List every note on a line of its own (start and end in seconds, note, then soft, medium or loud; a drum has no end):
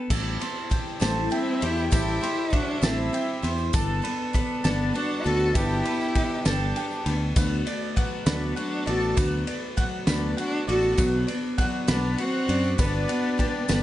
0.00 0.10 B3 medium
0.00 0.10 D4 medium
0.00 0.10 B4 medium
0.10 0.36 A1 loud
0.10 0.41 A2 loud
0.10 0.41 G3 medium
0.10 0.40 C4 loud
0.10 0.40 E4 loud
0.10 0.38 G4 loud
0.10 1.31 A4 loud
0.10 kick loud
0.10 crash loud
0.10 tambourine loud
0.40 0.69 C4 medium
0.40 0.70 E4 medium
0.40 0.70 G4 medium
0.40 1.61 C5 medium
0.40 ride medium
0.70 0.99 G3 medium
0.70 0.99 C4 medium
0.70 0.99 E4 medium
0.70 0.98 G4 medium
0.70 1.01 G5 medium
0.70 kick medium
0.70 ride medium
1.00 1.28 A1 loud
1.00 1.32 A2 medium
1.00 1.29 G3 medium
1.00 1.33 A3 medium
1.00 1.29 C4 medium
1.00 1.30 E4 medium
1.00 1.30 G4 medium
1.00 2.22 A5 medium
1.00 snare loud
1.00 ride medium
1.00 tambourine loud
1.30 1.61 G3 medium
1.30 1.61 C4 medium
1.30 1.64 C4 loud
1.30 1.61 E4 medium
1.30 1.62 E4 medium
1.30 1.60 G4 medium
1.30 2.53 G5 medium
1.30 ride medium
1.61 1.88 E2 medium
1.61 1.91 C4 soft
1.61 1.91 E4 medium
1.61 1.92 E4 loud
1.61 1.91 G4 medium
1.61 2.21 C5 medium
1.61 ride medium
1.77 tambourine soft
1.91 2.18 A1 loud
1.91 2.22 A2 medium
1.91 2.22 G3 loud
1.91 2.22 C4 medium
1.91 2.21 E4 medium
1.91 2.55 E4 loud
1.91 2.20 G4 loud
1.91 2.49 G4 loud
1.91 3.13 A4 loud
1.91 kick loud
1.91 ride medium
1.91 tambourine loud
2.21 2.50 C4 soft
2.21 2.51 E4 soft
2.21 2.52 G4 medium
2.21 3.42 C5 medium
2.21 ride medium
2.50 2.82 G3 medium
2.50 2.81 C4 medium
2.50 2.85 D4 loud
2.50 2.81 E4 medium
2.50 2.84 F#4 medium
2.50 3.74 E5 medium
2.50 kick medium
2.50 ride medium
2.81 3.09 A1 loud
2.81 3.13 A2 medium
2.81 3.11 G3 medium
2.81 3.12 C4 medium
2.81 3.51 C4 medium
2.81 3.13 E4 medium
2.81 3.52 E4 medium
2.81 3.12 G4 medium
2.81 3.13 A5 medium
2.81 snare loud
2.81 ride medium
2.81 tambourine loud
3.13 3.43 G3 medium
3.13 3.43 C4 medium
3.13 3.42 E4 medium
3.13 3.41 G4 medium
3.13 3.73 G5 medium
3.13 ride medium
3.43 3.69 E2 loud
3.43 3.73 C4 medium
3.43 3.74 E4 medium
3.43 3.73 G4 medium
3.43 3.73 C5 medium
3.43 ride medium
3.58 tambourine soft
3.73 4.00 G1 loud
3.73 4.04 G3 medium
3.73 4.03 B3 loud
3.73 4.02 D4 loud
3.73 4.94 A4 loud
3.73 4.01 A4 loud
3.73 kick loud
3.73 ride medium
3.73 tambourine loud
4.02 4.33 B3 medium
4.02 4.34 D4 medium
4.02 4.33 A4 medium
4.02 5.24 B4 medium
4.02 ride medium
4.33 4.64 G3 medium
4.33 4.64 B3 medium
4.33 4.63 D4 medium
4.33 4.63 A4 medium
4.33 4.63 B5 medium
4.33 kick medium
4.33 ride medium
4.64 4.91 G1 loud
4.64 4.92 G3 medium
4.64 4.96 B3 loud
4.64 4.93 B3 medium
4.64 4.94 D4 medium
4.64 4.93 D4 medium
4.64 4.95 A4 medium
4.64 5.85 A5 medium
4.64 snare loud
4.64 ride medium
4.64 tambourine loud
4.93 5.24 G3 medium
4.93 5.25 B3 medium
4.93 5.26 D4 loud
4.93 5.24 D4 medium
4.93 5.26 F#4 medium
4.93 5.23 A4 medium
4.93 6.15 D5 medium
4.93 ride medium
5.24 5.51 D2 loud
5.24 5.54 B3 medium
5.24 5.55 D4 medium
5.24 5.55 F#4 loud
5.24 5.55 A4 medium
5.24 5.55 A4 loud
5.24 5.84 B4 medium
5.24 ride medium
5.40 tambourine soft
5.54 5.81 G1 loud
5.54 5.85 G3 medium
5.54 5.85 B3 medium
5.54 5.86 D4 medium
5.54 6.46 E4 loud
5.54 6.44 G4 loud
5.54 6.76 A4 loud
5.54 5.84 A4 loud
5.54 kick loud
5.54 ride medium
5.54 tambourine loud
5.71 tambourine soft
5.85 6.16 B3 soft
5.85 6.16 D4 soft
5.85 6.16 A4 medium
5.85 7.05 B4 medium
5.85 ride medium
6.01 tambourine soft
6.15 6.46 G3 medium
6.15 6.46 B3 medium
6.15 6.46 D4 medium
6.15 6.46 A4 medium
6.15 6.75 G5 medium
6.15 kick medium
6.15 ride medium
6.45 6.72 G1 loud
6.45 6.76 G3 medium
6.45 6.76 B3 medium
6.45 7.13 D4 medium
6.45 6.77 D4 medium
6.45 7.14 G4 medium
6.45 6.77 A4 medium
6.45 7.36 A5 medium
6.45 snare loud
6.45 ride medium
6.45 tambourine loud
6.76 7.06 G3 medium
6.76 7.07 B3 medium
6.76 7.07 D4 medium
6.76 7.06 A4 medium
6.76 7.36 G5 medium
6.76 ride medium
6.76 tambourine soft
6.91 tambourine soft
7.06 7.32 D2 medium
7.06 7.36 B3 soft
7.06 7.37 D4 medium
7.06 7.37 A4 medium
7.06 7.35 B4 medium
7.06 ride medium
7.36 7.62 D2 loud
7.36 7.67 D3 medium
7.36 7.67 F#3 medium
7.36 7.67 A3 loud
7.36 7.66 B3 loud
7.36 7.66 F#4 loud
7.36 8.57 B4 loud
7.36 kick loud
7.36 ride medium
7.36 tambourine loud
7.67 7.96 A3 medium
7.67 7.96 B3 medium
7.67 7.97 F#4 medium
7.67 8.85 D5 medium
7.67 ride medium
7.96 8.26 F#3 medium
7.96 8.25 A3 medium
7.96 8.25 B3 medium
7.96 8.25 F#4 medium
7.96 8.55 F#5 medium
7.96 kick medium
7.96 ride medium
8.26 8.52 D2 loud
8.26 8.57 D3 medium
8.26 8.55 F#3 medium
8.26 8.56 A3 medium
8.26 8.57 B3 medium
8.26 8.59 B3 medium
8.26 8.54 D4 medium
8.26 8.56 F#4 medium
8.26 9.47 B5 medium
8.26 snare loud
8.26 ride medium
8.26 tambourine medium
8.56 8.87 F#3 medium
8.56 8.87 A3 medium
8.56 8.86 B3 medium
8.56 8.89 D4 loud
8.56 8.86 F#4 medium
8.56 8.85 F#4 medium
8.56 9.76 F#5 medium
8.56 ride medium
8.86 9.13 A1 medium
8.86 9.16 A3 medium
8.86 9.17 B3 medium
8.86 9.17 F#4 medium
8.86 9.17 F#4 loud
8.86 9.17 A4 medium
8.86 9.46 D5 medium
8.86 ride medium
9.02 tambourine soft
9.17 9.43 D2 loud
9.17 9.47 D3 medium
9.17 9.47 F#3 medium
9.17 9.47 A3 medium
9.17 9.47 B3 medium
9.17 9.46 F#4 medium
9.17 10.37 B4 loud
9.17 kick loud
9.17 ride medium
9.17 tambourine loud
9.47 9.76 A3 medium
9.47 9.77 B3 medium
9.47 9.77 F#4 medium
9.47 10.66 D5 medium
9.47 ride medium
9.77 10.07 F#3 medium
9.77 10.08 A3 medium
9.77 10.08 B3 medium
9.77 10.07 F#4 medium
9.77 10.36 F#5 medium
9.77 kick medium
9.77 ride medium
10.07 10.33 D2 loud
10.07 10.39 D3 medium
10.07 10.37 F#3 medium
10.07 10.38 A3 medium
10.07 10.38 B3 medium
10.07 10.37 B3 medium
10.07 10.36 D4 medium
10.07 10.38 F#4 medium
10.07 10.97 B5 medium
10.07 snare loud
10.07 ride medium
10.07 tambourine loud
10.37 10.68 F#3 medium
10.37 10.68 A3 medium
10.37 10.68 B3 medium
10.37 10.66 D4 loud
10.37 10.66 F#4 medium
10.37 10.67 F#4 medium
10.37 10.98 F#5 medium
10.37 ride medium
10.67 10.94 A1 loud
10.67 10.98 A3 medium
10.67 10.98 B3 medium
10.67 10.96 F#4 loud
10.67 10.98 F#4 medium
10.67 10.96 A4 medium
10.67 10.98 D5 medium
10.67 ride medium
10.82 tambourine soft
10.98 11.24 B1 loud
10.98 11.28 B2 medium
10.98 11.28 F#3 medium
10.98 11.28 B3 medium
10.98 11.29 D4 medium
10.98 11.27 F#4 medium
10.98 12.18 B4 loud
10.98 kick loud
10.98 ride medium
10.98 tambourine loud
11.27 11.59 B3 medium
11.27 11.59 D4 medium
11.27 11.58 F#4 medium
11.27 12.48 D5 medium
11.27 ride medium
11.58 11.88 F#3 medium
11.58 11.87 B3 medium
11.58 11.87 D4 medium
11.58 11.86 F#4 medium
11.58 12.18 F#5 medium
11.58 kick medium
11.58 ride medium
11.87 12.15 B1 loud
11.87 12.19 B2 medium
11.87 12.18 F#3 medium
11.87 12.18 B3 medium
11.87 12.22 B3 loud
11.87 12.18 D4 medium
11.87 12.18 F#4 medium
11.87 12.79 B5 loud
11.87 snare loud
11.87 ride medium
11.87 tambourine loud
12.18 12.49 F#3 medium
12.18 12.79 C4 loud
12.18 12.48 D4 medium
12.18 12.79 F#4 loud
12.18 12.47 F#4 medium
12.18 12.79 F#5 medium
12.18 ride medium
12.48 12.75 F#2 loud
12.48 12.77 D4 medium
12.48 12.78 F#4 medium
12.48 12.78 D5 medium
12.48 ride medium
12.63 tambourine soft
12.78 13.05 G1 loud
12.78 13.09 G3 medium
12.78 13.08 B3 medium
12.78 13.83 B3 loud
12.78 13.07 D4 medium
12.78 13.83 D4 medium
12.78 13.07 F#4 medium
12.78 13.83 B4 loud
12.78 kick loud
12.78 ride medium
12.78 tambourine loud
13.08 13.38 B3 soft
13.08 13.38 D4 soft
13.08 13.38 F#4 medium
13.08 13.38 F#5 medium
13.08 ride medium
13.38 13.68 G3 medium
13.38 13.67 B3 medium
13.38 13.67 D4 medium
13.38 13.83 G5 medium
13.38 kick medium
13.38 ride medium
13.38 tambourine soft
13.68 13.83 G1 loud
13.68 13.83 G3 medium
13.68 13.83 B3 medium
13.68 13.83 D4 medium
13.68 13.83 B5 medium
13.68 snare loud
13.68 ride medium
13.68 tambourine loud